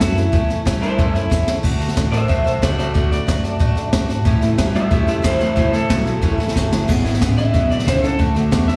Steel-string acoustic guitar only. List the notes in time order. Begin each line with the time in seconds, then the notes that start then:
0.00 E3 A3 C#4 E4
0.15 A3 C#4 E4
0.32 A2 E3 A3 C#4 E4
0.49 A3 C#4 E4
0.65 E3 A3 C#4 E4
0.81 A3 C#4 E4
0.99 A2 E3 A3 C#4 E4
1.15 A3 C#4 E4
1.30 E3 A3 C#4 E4
1.47 A3 C#4 E4
1.63 D3 A3 D4 F#4
1.79 A3 D4 F#4
1.96 D3 A3 D4 F#4
2.12 A3 D4 F#4
2.28 D3 A3 D4 F#4
2.44 A3 D4 F#4
2.62 D3 A3 D4 F#4
2.78 A3 D4 F#4
2.94 D3 A3 D4 F#4
3.11 A3 D4 F#4
3.27 D3 A3 D4 F#4
3.44 A3 D4 F#4
3.59 D3 A3 D4 F#4
3.76 A3 D4 F#4
3.92 D3 A3 D4 F#4
4.09 A3 D4 F#4
4.25 A2 E3 A3 C#4 E4
4.41 A3 C#4 E4
4.58 E3 A3 C#4 E4
4.75 A3 C#4 E4
4.91 A2 E3 A3 C#4 E4
5.07 A3 C#4 E4
5.22 E3 A3 C#4 E4
5.39 A3 C#4 E4
5.56 A2 E3 A3 C#4 E4
5.73 A3 C#4 E4
5.89 E3 A3 C#4 E4
6.06 A3 C#4 E4
6.22 A2 E3 A3 C#4 E4
6.38 A3 C#4 E4
6.53 E3 A3 C#4 E4
6.71 A3 C#4 E4
6.88 E2 B2 E3 G#3 B3 E4
7.04 E3 G#3 B3 E4
7.20 E3 G#3 B3 E4
7.36 E3 G#3 B3 E4
7.54 E2 B2 E3 G#3 B3 E4
7.70 E3 G#3 B3 E4
7.87 E3 G#3 B3 E4
8.02 E3 G#3 B3 E4
8.19 D3 A3 D4 F#4
8.35 A3 D4 F#4
8.51 D3 A3 D4 F#4
8.68 A3 D4 F#4